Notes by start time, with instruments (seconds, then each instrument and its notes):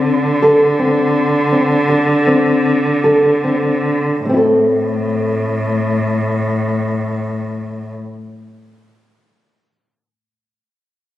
Already playing: cello D3, nylon-string guitar C4
0.42 nylon-string guitar A4
0.79 nylon-string guitar C4
1.52 nylon-string guitar C4
1.89 nylon-string guitar A4
2.27 nylon-string guitar C4
3.04 nylon-string guitar A4
3.44 nylon-string guitar C4
4.25 cello A2, nylon-string guitar A3
4.29 nylon-string guitar C4
4.34 nylon-string guitar E4 A4